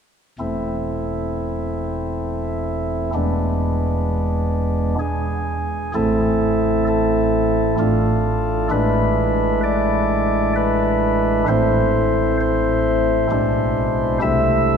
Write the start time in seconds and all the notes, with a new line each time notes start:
0.39 E1 E2 A3 C4 E4
3.14 E1 E2 G#3 B3 D4
4.99 G#4
5.94 A1 A2 A3 C4 E4 A4
6.88 A4
7.79 A1 A2 A3 D4 F4
8.70 A1 A2 G#3 D4 E4 B4
9.64 D5
10.56 B4
11.48 A1 A2 A3 C4 E4 C5
12.40 C5
13.31 B1 B2 G#3 D4 E4
14.22 C2 C3 A3 C4 E4 E5